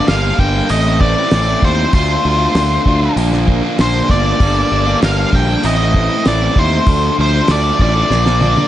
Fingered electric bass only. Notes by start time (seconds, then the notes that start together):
0.09 G1
0.39 G1
0.70 A1
1.32 A1
1.63 D#2
1.94 D2
2.25 D2
2.55 D2
2.86 D2
3.16 A#1
3.79 A#1
4.10 G1
4.40 G1
4.71 G1
5.02 G1
5.33 A#1
5.64 A1
6.26 A1
6.56 D#2
6.87 D2
7.18 D2
7.49 D2
7.80 A1
8.10 A#1